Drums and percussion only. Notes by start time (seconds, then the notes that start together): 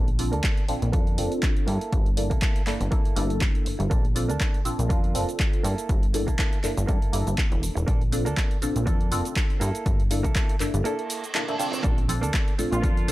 0.08 closed hi-hat
0.19 open hi-hat
0.33 closed hi-hat
0.44 kick, clap, closed hi-hat
0.57 closed hi-hat
0.69 open hi-hat
0.82 closed hi-hat
0.93 kick, closed hi-hat
1.07 closed hi-hat
1.18 open hi-hat
1.32 closed hi-hat
1.43 kick, clap, closed hi-hat
1.57 closed hi-hat
1.68 open hi-hat
1.81 closed hi-hat
1.93 kick, closed hi-hat
2.06 closed hi-hat
2.17 open hi-hat
2.31 kick, closed hi-hat
2.42 kick, clap, closed hi-hat
2.56 closed hi-hat
2.67 clap, open hi-hat
2.81 closed hi-hat
2.92 kick, closed hi-hat
3.05 closed hi-hat
3.16 open hi-hat
3.30 closed hi-hat
3.41 kick, clap, closed hi-hat
3.55 closed hi-hat
3.66 open hi-hat
3.80 closed hi-hat
3.91 kick, closed hi-hat, shaker
4.05 closed hi-hat
4.16 open hi-hat, shaker
4.30 closed hi-hat, shaker
4.41 kick, clap, closed hi-hat, shaker
4.54 closed hi-hat
4.65 open hi-hat, shaker
4.79 closed hi-hat, shaker
4.90 kick, closed hi-hat, shaker
5.04 closed hi-hat
5.15 open hi-hat, shaker
5.29 closed hi-hat, shaker
5.40 kick, clap, closed hi-hat, shaker
5.53 closed hi-hat
5.64 open hi-hat, shaker
5.78 closed hi-hat, shaker
5.89 kick, closed hi-hat, shaker
6.03 closed hi-hat
6.14 open hi-hat, shaker
6.28 kick, closed hi-hat, shaker
6.39 kick, clap, closed hi-hat, shaker
6.53 closed hi-hat
6.64 clap, open hi-hat, shaker
6.77 closed hi-hat, shaker
6.89 kick, closed hi-hat, shaker
7.02 closed hi-hat
7.13 open hi-hat, shaker
7.27 closed hi-hat, shaker
7.38 kick, clap, closed hi-hat, shaker
7.52 closed hi-hat
7.63 open hi-hat, shaker
7.77 closed hi-hat, shaker
7.88 kick, closed hi-hat, shaker
8.01 closed hi-hat
8.12 open hi-hat, shaker
8.26 closed hi-hat, shaker
8.37 kick, clap, closed hi-hat, shaker
8.51 closed hi-hat
8.62 open hi-hat, shaker
8.76 closed hi-hat, shaker
8.87 kick, closed hi-hat, shaker
9.01 closed hi-hat
9.12 open hi-hat, shaker
9.25 closed hi-hat, shaker
9.36 kick, clap, closed hi-hat, shaker
9.50 closed hi-hat
9.61 open hi-hat, shaker
9.75 closed hi-hat, shaker
9.86 kick, closed hi-hat, shaker
10.00 closed hi-hat
10.11 open hi-hat, shaker
10.24 kick, closed hi-hat, shaker
10.36 kick, clap, closed hi-hat, shaker
10.49 closed hi-hat
10.60 clap, open hi-hat, shaker
10.74 closed hi-hat, shaker
10.85 closed hi-hat, shaker
10.99 closed hi-hat
11.10 open hi-hat, shaker
11.24 closed hi-hat, shaker
11.35 clap, closed hi-hat, shaker
11.48 closed hi-hat
11.60 open hi-hat, shaker
11.73 closed hi-hat, shaker
11.84 kick, closed hi-hat, shaker
11.98 closed hi-hat
12.08 open hi-hat, low conga, shaker
12.23 closed hi-hat, shaker
12.34 kick, clap, closed hi-hat, shaker
12.48 closed hi-hat
12.59 open hi-hat, high conga, shaker
12.72 closed hi-hat, shaker
12.84 kick, closed hi-hat, shaker
12.97 closed hi-hat
13.08 open hi-hat